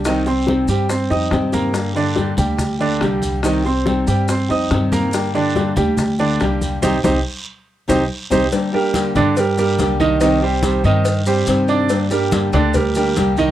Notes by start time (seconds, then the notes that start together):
Already playing: C2
0.05 C3 D#3 G3 C4 D#4 G4 D#5, high bongo, high conga, long guiro, maracas
0.26 G3 C4 G4 C5 C6, high bongo, high conga, maracas
0.46 C3 D#3 G3 C4 G4, high bongo, high conga, short guiro, maracas
0.68 G2 G3 C4 G4 G5, high conga, short guiro, maracas
0.89 C4 C5 C6, muted nylon-string guitar stroke, high bongo, high conga, long guiro, maracas
1.10 F2 G3 C4 D#4 G4 D#5 D#6, high bongo, high conga, maracas
1.30 G2 C3 D#3 G3 C4 G4, high bongo, low bongo, high conga, short guiro, maracas
1.52 A#3 A#4 A#5, high bongo, high conga, short guiro, maracas
1.72 D3 G3 A#3 D4 G4, high bongo, high conga, long guiro, maracas
1.93 D3 A#3 D4 G4 D5, high conga, maracas
2.15 D3 G3 A#3 D4 G4, high bongo, high conga, short guiro, maracas
2.37 D2 G3 A#3 D4 G4 G5, high conga, low conga, short guiro, maracas
2.57 muted nylon-string guitar stroke, high bongo, high conga, low conga, long guiro, maracas
2.79 D3 A#3 D4 G4 D5, high conga, maracas
3.01 C2 D3 G3 A#3 D4 G4 G5, high bongo, low bongo, high conga, short guiro, maracas
3.22 high conga, short guiro, maracas
3.42 C3 D#3 G3 C4 D#4 G4 D#5, high bongo, high conga, long guiro, maracas
3.64 G3 C4 G4 C5 C6, high bongo, high conga, maracas
3.86 C3 D#3 G3 C4 G4, high bongo, high conga, short guiro, maracas
4.07 G2 G3 C4 G4 G5, high conga, short guiro, maracas
4.28 C4 C5 C6, muted nylon-string guitar stroke, high bongo, high conga, long guiro, maracas
4.49 F2 G3 C4 D#4 G4 D#5 D#6, high bongo, high conga, maracas
4.71 G2 C3 D#3 G3 C4 G4, high bongo, low bongo, high conga, short guiro, maracas
4.92 A#3 A#4 A#5, high bongo, high conga, short guiro, maracas
5.12 D3 G3 A#3 D4 G4, high bongo, high conga, long guiro, maracas
5.34 D3 A#3 D4 G4 D5, high conga, maracas
5.55 D3 G3 A#3 D4 G4, high bongo, high conga, short guiro, maracas
5.76 D2 G3 A#3 D4 G4 G5, high conga, low conga, short guiro, maracas
5.97 muted nylon-string guitar stroke, high bongo, high conga, low conga, long guiro, maracas
6.19 D3 A#3 D4 G4 D5, high conga, maracas
6.40 C2 D3 G3 A#3 D4 G4 G5, high bongo, low bongo, high conga, short guiro, maracas
6.61 high conga, short guiro, maracas
6.82 C2 D#3 G3 C4 D#4 G4 C5, high bongo, high conga, long guiro, maracas
7.03 C2 D#3 G3 C4 D#4 G4 C5, high bongo, high conga, long guiro, maracas
7.88 C2 D#3 G3 C4 D#4 G4 C5, high bongo, high conga, long guiro, maracas
8.30 C2 D#3 G3 C4 D#4 G4 C5, high bongo, high conga, long guiro, maracas
8.51 D3 G3 A#3 D4 G4, cowbell, high conga, long guiro, maracas
8.73 G3 A#3 D4 G4 A#4, high conga
8.93 D3 G3 A#3 D4 G4, cowbell, high conga, short guiro, maracas
9.15 G2 D3 A#3 D4 G4 D5, cowbell, high conga, low conga, short guiro, maracas
9.35 G3 G4 A#4, muted nylon-string guitar stroke, cowbell, high conga, long guiro, maracas
9.57 G3 A#3 D4 G4 A#4, high conga, maracas
9.78 C2 D3 G3 A#3 D4 G4, cowbell, high conga, short guiro, maracas
10.00 D#3 D#4 D#5, high conga, short guiro, maracas
10.21 C3 D#3 G3 C4 D#4 G4 D#5, cowbell, high conga, long guiro, maracas
10.41 G3 C4 G4 C5, high conga
10.62 C3 D#3 G3 C4 G4 C5, cowbell, high conga, short guiro, maracas
10.84 G2 D#3 G3 C4 D#4 G4 D#5, high conga, short guiro, maracas
11.05 muted nylon-string guitar stroke, cowbell, high conga, long guiro, maracas
11.26 G3 C4 G4 C5, high conga, maracas
11.46 G2 C3 D#3 G3 C4 G4, cowbell, high conga, short guiro, maracas
11.68 D4 D5, short guiro, maracas
11.89 D3 G3 A#3 D4 G4, cowbell, high conga, long guiro, maracas
12.11 G3 A#3 D4 G4 A#4, high conga, maracas
12.31 D3 G3 A#3 D4 G4, cowbell, high conga, short guiro, maracas
12.53 D2 D3 A#3 D4 G4 D5, cowbell, high conga, low conga, short guiro, maracas
12.74 G3 G4 A#4, muted nylon-string guitar stroke, cowbell, high conga, low conga, long guiro, maracas
12.95 G3 A#3 D4 G4 A#4, high conga, maracas
13.16 C2 D3 G3 A#3 D4 G4, cowbell, high conga, short guiro, maracas
13.37 D#3 D#4 D#5, high conga, short guiro, maracas